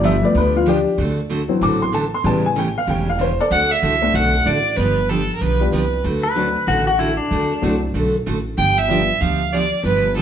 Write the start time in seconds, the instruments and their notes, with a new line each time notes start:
Already playing: upright bass G1
0.03 steel-string acoustic guitar D3 F3 B3 D4 G4, upright piano E5
0.22 upright piano F3 A3 B3 D5
0.34 upright bass D2, steel-string acoustic guitar D3 F3 B3 D4 G4, upright piano B4
0.56 upright piano F4
0.66 steel-string acoustic guitar D3 F3 B3 D4 G4, upright piano D4 G4
0.98 upright bass D2, steel-string acoustic guitar D3 A3 C4 F#4 A4
1.29 steel-string acoustic guitar D3 A3 C4 F#4 A4
1.48 upright piano E3 F#3 C4
1.61 upright bass A1, steel-string acoustic guitar D3 A3 C4 F#4 A4, upright piano D6
1.82 upright piano C6
1.92 steel-string acoustic guitar D3 A3 C4 F#4 A4, upright piano A5
2.14 upright piano C6
2.24 upright bass A1, upright piano C#3 G3 B3 A5, steel-string acoustic guitar C#3 E3 A3 C#4 G4
2.46 upright piano G#5
2.56 steel-string acoustic guitar C#3 E3 A3 C#4 G4, upright piano G5
2.78 upright piano F5
2.87 upright bass E1, steel-string acoustic guitar C#3 E3 A3 C#4 G4, upright piano G5
3.09 upright piano F5
3.18 steel-string acoustic guitar C#3 E3 A3 C#4 G4, upright piano C5
3.41 upright piano A4 D5
3.51 upright bass D2, steel-string acoustic guitar D3 A3 C4 F#4 A4, fiddle F#5
3.71 fiddle E5
3.82 upright bass C2, steel-string acoustic guitar D3 A3 C4 F#4 A4
4.01 upright piano A3 C4 D4 F#4 A4
4.14 upright bass B1, steel-string acoustic guitar D3 A3 C4 F#4 A4, fiddle F#5
4.46 upright bass A1, steel-string acoustic guitar D3 A3 C4 F#4 A4, fiddle D5
4.77 upright bass G1, steel-string acoustic guitar D3 F3 B3 D4 G4, fiddle B4
5.09 steel-string acoustic guitar D3 F3 B3 D4 G4, fiddle A4
5.35 fiddle A#4
5.41 upright bass B1, steel-string acoustic guitar D3 F3 B3 D4 G4, fiddle B4
5.60 upright piano G3 B3 D4 F4 G4
5.72 upright bass C2, steel-string acoustic guitar D3 F3 B3 D4 G4, fiddle B4
6.04 upright bass D2, steel-string acoustic guitar D3 A3 C4 F#4 A4
6.23 pedal steel guitar B4
6.35 steel-string acoustic guitar D3 A3 C4 F#4 A4, upright piano F#3 A3 C4 D4 F#4
6.67 upright bass A1, steel-string acoustic guitar D3 A3 C4 F#4 A4, pedal steel guitar F#4
6.87 pedal steel guitar F#4
6.99 steel-string acoustic guitar D3 A3 C4 F#4 A4, pedal steel guitar E4
7.17 pedal steel guitar D4
7.31 upright bass D2, steel-string acoustic guitar D3 A3 C4 F#4 A4
7.61 upright bass C2, steel-string acoustic guitar D3 A3 C4 F#4 A4, upright piano F#3 A3 C4 D4 F#4
7.94 upright bass B1, steel-string acoustic guitar D3 A3 C4 F#4 A4
8.26 upright bass A1, steel-string acoustic guitar D3 A3 C4 F#4 A4
8.58 upright bass G1, steel-string acoustic guitar D3 F3 B3 D4 G4, fiddle G5
8.78 fiddle E5
8.88 steel-string acoustic guitar D3 F3 B3 D4 G4, upright piano F3 G3 B3 D4 F4
9.21 upright bass D2, steel-string acoustic guitar D3 F3 B3 D4 G4, fiddle F5
9.53 steel-string acoustic guitar D3 F3 B3 D4 G4, fiddle D5
9.84 upright bass G1, steel-string acoustic guitar D3 F3 B3 D4 G4, fiddle B4
10.16 steel-string acoustic guitar D3 F3 B3 D4 G4, fiddle A4